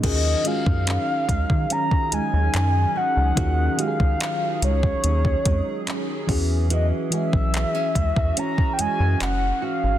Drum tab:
CC |x---------------|----------------|----------------|
HH |x-x-x-x-x-x-x---|x-x-x-x-x-x-x-o-|x-x-x-x-x-x-x---|
CP |----x-------x---|----x-------x---|----x-------x---|
BD |o--o--oo-o------|o--o---o-oo---o-|---o--oo-o------|